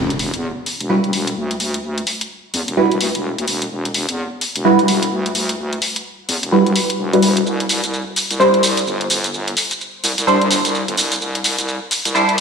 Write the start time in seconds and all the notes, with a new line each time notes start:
Already playing: E1
0.10 closed hi-hat
0.19 open hi-hat
0.34 E2, closed hi-hat
0.66 open hi-hat
0.80 E1, closed hi-hat
0.90 G3 E4 F#4 B4
1.04 closed hi-hat
1.13 E1, open hi-hat
1.27 closed hi-hat
1.36 D2
1.51 closed hi-hat
1.60 D2, open hi-hat
1.74 closed hi-hat
1.98 closed hi-hat
2.07 open hi-hat
2.21 closed hi-hat
2.54 E2, open hi-hat
2.68 E1, closed hi-hat
2.77 G3 E4 F#4 B4
2.92 closed hi-hat
3.01 D2, open hi-hat
3.15 E1, closed hi-hat
3.38 D2, closed hi-hat
3.48 E1, open hi-hat
3.62 closed hi-hat
3.71 E1
3.85 closed hi-hat
3.94 open hi-hat
4.09 E2, closed hi-hat
4.41 open hi-hat
4.56 E1, closed hi-hat
4.65 G3 E4 F#4 B4
4.79 closed hi-hat
4.88 E1, open hi-hat
5.03 closed hi-hat
5.12 D2
5.26 closed hi-hat
5.35 D2, open hi-hat
5.49 closed hi-hat
5.73 closed hi-hat
5.82 open hi-hat
5.96 closed hi-hat
6.29 E2, open hi-hat
6.43 E1, closed hi-hat
6.52 G3 E4 F#4 B4
6.66 E1, closed hi-hat
6.76 open hi-hat
6.90 closed hi-hat
6.99 E1
7.13 G3 E4 F#4 B4, closed hi-hat
7.22 E1, open hi-hat
7.37 closed hi-hat
7.46 C2, shaker
7.60 closed hi-hat
7.69 open hi-hat, shaker
7.84 C2, closed hi-hat, shaker
7.94 shaker
8.16 open hi-hat, shaker
8.30 C2, closed hi-hat, shaker
8.40 G3 D4 E4 C5, shaker
8.54 closed hi-hat
8.63 C2, open hi-hat, shaker
8.77 closed hi-hat, shaker
8.86 G1, shaker
9.01 closed hi-hat
9.10 G1, open hi-hat, shaker
9.24 closed hi-hat, shaker
9.34 shaker
9.48 closed hi-hat
9.57 open hi-hat, shaker
9.71 closed hi-hat, shaker
9.81 shaker
10.04 C2, open hi-hat, shaker
10.18 C2, closed hi-hat, shaker
10.27 G3 D4 E4 C5, shaker
10.41 closed hi-hat
10.51 G1, open hi-hat, shaker
10.65 C2, closed hi-hat, shaker
10.75 shaker
10.88 G1, closed hi-hat
10.97 C2, open hi-hat, shaker
11.12 closed hi-hat, shaker
11.21 C2, shaker
11.35 closed hi-hat
11.44 open hi-hat, shaker
11.59 C2, closed hi-hat, shaker
11.68 shaker
11.91 open hi-hat, shaker
12.05 C2, closed hi-hat, shaker
12.15 G3 D4 E4 C5, shaker
12.29 closed hi-hat